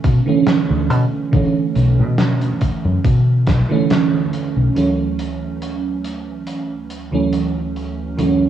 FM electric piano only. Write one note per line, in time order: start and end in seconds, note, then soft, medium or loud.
0.00 0.21 D3 medium
0.00 0.21 E3 medium
0.00 0.22 A3 medium
0.00 0.23 C#4 loud
0.26 1.27 D3 medium
0.26 1.28 E3 medium
0.26 1.28 A3 medium
0.26 1.29 C#4 loud
1.31 3.64 D3 medium
1.31 3.65 E3 medium
1.31 3.65 A3 medium
1.31 3.66 C#4 loud
3.69 4.70 D3 medium
3.69 4.71 E3 medium
3.69 4.71 A3 medium
3.69 4.72 C#4 loud
4.74 7.07 D2 medium
4.74 7.07 E3 medium
4.74 7.08 F#3 medium
4.74 7.08 A3 medium
4.74 7.08 C#4 loud
7.11 8.13 D2 medium
7.11 8.13 E3 medium
7.11 8.14 F#3 medium
7.11 8.14 A3 medium
7.11 8.15 C#4 loud
8.17 8.49 D2 medium
8.17 8.49 E3 medium
8.17 8.49 F#3 medium
8.17 8.49 A3 medium
8.17 8.49 C#4 medium